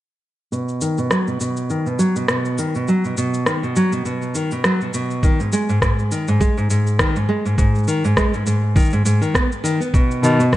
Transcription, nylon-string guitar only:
0.52 B2
0.82 D#3
0.98 B2
1.11 F#3
1.28 B2
1.41 B2
1.70 D#3
1.86 B2
1.99 F#3
2.16 B2
2.29 B2
2.59 D#3
2.75 B2
2.88 F#3
3.05 B2
3.18 B2
3.47 D#3
3.63 B2
3.76 F#3
3.92 B2
4.05 B2
4.35 D#3
4.52 B2
4.65 F#3
4.82 B2
4.94 B2
5.24 D#3
5.40 G#2
5.53 G#3
5.69 G#2
5.82 G#2
6.12 D#3
6.28 G#2
6.41 G#3
6.57 G#2
6.70 G#2
7.00 D#3
7.16 G#2
7.29 G#3
7.46 G#2
7.58 G#2
7.88 D#3
8.04 G#2
8.17 G#3
8.34 G#2
8.46 G#2
8.76 D#3
8.93 G#2
9.05 G#2
9.22 D#3
9.34 B3
9.64 D#3
9.80 B3
9.94 B2
10.23 D#3
10.40 B2
10.53 F#3

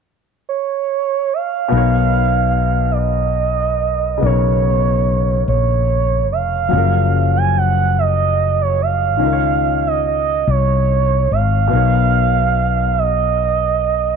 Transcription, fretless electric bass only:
1.72 B1
4.23 B1
5.48 A#1
6.32 F1
6.73 F#1
9.23 C#2
10.48 C2
11.31 G#1
11.73 B1

